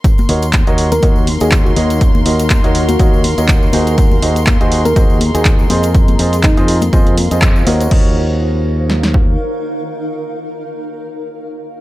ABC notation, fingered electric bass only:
X:1
M:4/4
L:1/16
Q:"Swing 16ths" 1/4=122
K:Ebdor
V:1 name="Fingered electric bass" clef=bass
z2 E,,3 E,,3 E,,3 E,,3 E,,2- | E,,2 E,,3 E,,3 E,,3 E,,3 E,,2- | E,,2 E,,3 E,,3 E,,3 E,,3 F,,2- | F,,2 F,,3 F,,3 F,,3 F,,3 E,,2 |
E,,12 z4 | z16 |]